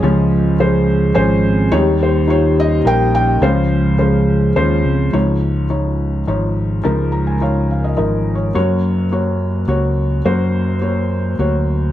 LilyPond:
<<
  \new Staff \with { instrumentName = "Felt piano" } { \time 3/4 \key des \major \tempo 4 = 106 << { <f' des''>4. r8 aes''4 | r8 c''8 des''8 ees''8 g''8 g''8 | f''4 r2 | r2. |
r8 bes''16 aes''16 f''8 f''16 ees''16 \tuplet 3/2 { ees''4 des''8 } | r2. | r2. | } \\ { <f des' des''>4 <f des' c''>4 <f des' c''>4 | <g ees' des''>4 <g ees' f'>4 <g ees' bes'>4 | <f des' c''>4 <f des' c''>4 <f des' c''>4 | <f ees' des''>4 <f ees' des''>4 <f ees' des''>4 |
<f ees' bes'>4 <f ees' des''>4 <f ees' bes'>4 | <bes ges' des''>4 <bes ges' des''>4 <bes ges' des''>4 | <bes ges' c''>4 <bes ges' des''>4 <bes ges' des''>4 | } >> }
  \new Staff \with { instrumentName = "Felt piano" } { \clef bass \time 3/4 \key des \major <des, des>2. | <ees, ees>2. | <des, des>2. | <des, des>2. |
<des, des>2. | <ges,, ges,>2. | <ges,, ges,>2. | }
  \new Staff \with { instrumentName = "Vibraphone" } { \time 3/4 \key des \major <f aes aes'>8 aes8 aes'4 aes8 c'8 | ees'8 bes8 g'8 des'8 bes8 des'8 | f8 aes8 aes'4 aes8 c'8 | r2. |
r2. | r2. | r2. | }
  \new Staff \with { instrumentName = "Fingered electric bass" } { \clef bass \time 3/4 \key des \major des,2 aes,,4 | ees,2 bes,,4 | des,2 ees,8 des,8 | des,2 aes,,4 |
des,2 aes,,4 | ges,2 des,4 | ges,2 d,4 | }
>>